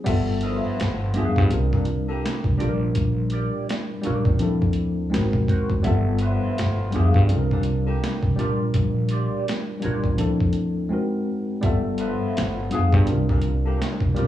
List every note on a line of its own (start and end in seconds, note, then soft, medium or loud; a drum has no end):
0.04 0.57 G1 medium
0.04 0.77 G3 loud
0.04 0.78 B3 medium
0.04 0.79 F4 medium
0.04 0.79 E5 medium
0.04 kick loud
0.04 closed hi-hat medium
0.04 crash medium
0.09 0.80 A4 loud
0.41 1.11 D3 medium
0.41 1.11 F3 medium
0.41 1.11 B3 medium
0.41 0.57 E4 medium
0.41 1.11 F4 medium
0.41 0.58 A#4 medium
0.41 0.59 D#5 medium
0.41 closed hi-hat medium
0.57 0.77 F4 medium
0.57 0.77 B4 medium
0.57 0.77 E5 medium
0.79 1.11 G1 loud
0.79 muted clean electric guitar stroke soft
0.79 snare loud
0.79 closed hi-hat medium
1.13 1.38 F2 medium
1.13 1.48 G3 medium
1.13 1.51 B3 medium
1.13 1.50 D4 medium
1.13 1.51 F4 medium
1.13 1.38 G#4 medium
1.13 1.39 B4 medium
1.13 1.39 F5 medium
1.13 closed hi-hat medium
1.18 1.53 G#4 loud
1.36 1.50 G2 medium
1.36 kick loud
1.49 2.47 G3 medium
1.49 2.48 C4 medium
1.49 2.48 D4 medium
1.49 2.49 F4 medium
1.49 closed hi-hat medium
1.53 2.15 C2 medium
1.53 2.50 A#4 medium
1.72 1.84 A#2 medium
1.72 1.84 D3 medium
1.72 1.84 G3 medium
1.72 1.84 D4 medium
1.72 kick medium
1.85 closed hi-hat medium
2.08 2.37 D3 medium
2.08 2.37 G3 medium
2.08 2.37 A#3 medium
2.08 2.37 G4 medium
2.23 muted clean electric guitar stroke soft
2.23 snare loud
2.23 closed hi-hat medium
2.44 2.58 C2 medium
2.44 kick medium
2.58 2.92 A#1 medium
2.58 3.88 G3 medium
2.58 3.89 A#3 medium
2.58 3.89 D4 medium
2.58 3.90 F4 medium
2.58 2.77 G4 medium
2.58 2.78 A#4 medium
2.58 2.78 D5 medium
2.58 closed hi-hat medium
2.63 2.69 A4 medium
2.69 3.94 A#4 medium
2.95 3.47 A#1 medium
2.95 kick medium
2.95 closed hi-hat medium
3.30 3.66 G4 medium
3.30 3.66 A#4 medium
3.30 3.66 D5 medium
3.30 closed hi-hat medium
3.69 muted clean electric guitar stroke soft
3.69 snare loud
3.69 closed hi-hat medium
4.02 4.39 G3 medium
4.02 4.40 A#3 medium
4.02 4.39 D4 medium
4.02 4.41 F4 medium
4.02 4.28 G4 medium
4.02 4.28 A#4 medium
4.02 closed hi-hat medium
4.06 4.25 A#1 medium
4.06 4.41 A#4 medium
4.06 4.29 D5 medium
4.25 4.39 A#2 medium
4.25 kick loud
4.38 5.04 F3 medium
4.38 5.05 C4 medium
4.38 5.05 D4 medium
4.38 5.06 E4 medium
4.38 closed hi-hat medium
4.42 5.04 D2 medium
4.42 5.06 A4 medium
4.62 kick medium
4.73 closed hi-hat medium
5.10 5.76 G#3 medium
5.10 5.77 C4 medium
5.10 5.77 D#4 medium
5.10 5.78 F#4 medium
5.10 muted clean electric guitar stroke soft
5.14 5.34 G#1 medium
5.14 5.78 A#4 medium
5.14 snare loud
5.14 closed hi-hat medium
5.33 5.47 A#1 medium
5.33 kick medium
5.48 5.67 C4 medium
5.48 5.68 F#4 medium
5.48 5.68 A#4 medium
5.48 kick medium
5.48 closed hi-hat medium
5.70 5.83 F#1 medium
5.70 kick loud
5.83 6.36 G1 loud
5.83 6.56 G3 medium
5.83 6.57 B3 medium
5.83 6.58 F4 medium
5.83 6.57 E5 medium
5.83 kick loud
5.83 closed hi-hat medium
5.87 6.58 A4 loud
6.19 6.89 D3 medium
6.19 6.89 F3 medium
6.19 6.89 B3 medium
6.19 6.89 F4 medium
6.19 6.55 F4 medium
6.19 6.55 B4 medium
6.19 closed hi-hat medium
6.23 6.56 E5 medium
6.58 6.90 G1 loud
6.58 muted clean electric guitar stroke soft
6.58 snare loud
6.58 closed hi-hat medium
6.91 7.27 G3 medium
6.91 7.29 B3 medium
6.91 7.29 D4 medium
6.91 7.30 F4 medium
6.91 7.17 G#4 medium
6.91 closed hi-hat medium
6.95 7.15 F2 loud
6.95 7.31 G#4 medium
6.95 7.18 B4 medium
6.95 7.18 F5 medium
7.14 7.28 G2 medium
7.14 kick loud
7.28 8.26 G3 medium
7.28 8.26 C4 medium
7.28 8.27 D4 medium
7.28 8.28 F4 medium
7.28 closed hi-hat medium
7.32 7.94 C2 loud
7.32 7.39 A4 medium
7.39 8.31 A#4 medium
7.51 7.62 A#2 medium
7.51 7.62 D3 medium
7.51 7.62 G3 medium
7.51 7.62 D4 medium
7.51 kick medium
7.63 closed hi-hat medium
7.86 8.16 D3 medium
7.86 8.16 G3 medium
7.86 8.16 A#3 medium
7.86 8.16 G4 medium
8.02 muted clean electric guitar stroke soft
8.02 snare loud
8.02 closed hi-hat medium
8.23 8.36 C2 medium
8.23 kick medium
8.36 9.66 G3 medium
8.36 9.67 A#3 medium
8.36 9.68 D4 medium
8.36 8.57 F4 medium
8.36 9.68 F4 medium
8.36 8.57 G4 medium
8.36 8.57 D5 medium
8.36 closed hi-hat medium
8.40 8.71 A#1 medium
8.40 9.69 A#4 medium
8.74 9.25 A#1 loud
8.74 kick loud
8.74 closed hi-hat medium
9.09 9.44 F4 medium
9.09 9.45 G4 medium
9.09 9.45 D5 medium
9.09 closed hi-hat medium
9.48 snare loud
9.48 closed hi-hat medium
9.80 10.17 G3 medium
9.80 10.18 A#3 medium
9.80 10.17 D4 medium
9.80 10.06 F4 medium
9.80 10.19 F4 medium
9.80 10.07 G4 medium
9.80 closed hi-hat medium
9.85 10.03 A#1 medium
9.85 10.20 A#4 medium
9.85 10.07 D5 medium
10.04 10.17 A#2 medium
10.04 kick loud
10.16 10.82 F3 medium
10.16 10.83 C4 medium
10.16 10.83 D4 medium
10.16 10.84 E4 medium
10.16 closed hi-hat medium
10.21 10.82 D2 medium
10.21 10.84 A4 medium
10.40 kick medium
10.53 closed hi-hat medium
10.89 11.55 G#3 medium
10.89 11.55 C4 medium
10.89 11.56 D#4 medium
10.89 11.56 F#4 medium
10.93 11.57 A#4 medium
11.61 12.14 G1 medium
11.61 12.34 G3 loud
11.61 12.35 B3 medium
11.61 12.36 F4 medium
11.61 12.35 E5 medium
11.61 kick loud
11.61 closed hi-hat medium
11.66 12.37 A4 loud
11.98 12.67 D3 medium
11.98 12.67 F3 medium
11.98 12.67 B3 medium
11.98 12.67 F4 medium
11.98 12.33 F4 medium
11.98 12.34 B4 medium
11.98 12.34 E5 medium
11.98 closed hi-hat medium
12.37 12.68 G1 medium
12.37 muted clean electric guitar stroke soft
12.37 snare loud
12.37 closed hi-hat medium
12.70 13.04 G3 medium
12.70 13.07 B3 medium
12.70 13.07 D4 medium
12.70 13.08 F4 medium
12.70 12.90 G#4 medium
12.70 12.91 B4 medium
12.70 12.91 F5 medium
12.70 closed hi-hat medium
12.74 12.94 F2 medium
12.74 13.09 G#4 medium
12.93 13.06 G2 medium
12.93 kick loud
13.05 14.04 G3 medium
13.05 14.05 C4 medium
13.05 14.05 D4 medium
13.05 14.06 F4 medium
13.05 closed hi-hat medium
13.10 13.72 C2 medium
13.10 14.06 A#4 medium
13.28 13.40 A#2 medium
13.28 13.40 D3 medium
13.28 13.40 G3 medium
13.28 13.40 D4 medium
13.28 kick medium
13.42 closed hi-hat medium
13.65 13.94 D3 medium
13.65 13.95 G3 medium
13.65 13.95 A#3 medium
13.65 13.95 G4 medium
13.80 muted clean electric guitar stroke soft
13.80 snare loud
13.80 closed hi-hat medium
14.00 14.14 C2 medium
14.00 kick loud
14.14 14.27 G3 medium
14.14 14.27 A#3 medium
14.14 14.24 C4 medium
14.14 14.27 F4 medium
14.14 14.27 G4 medium
14.14 14.27 A#4 medium
14.14 14.27 D5 medium
14.14 closed hi-hat medium
14.19 14.27 A#1 medium
14.19 14.27 A#4 medium
14.23 14.27 D4 medium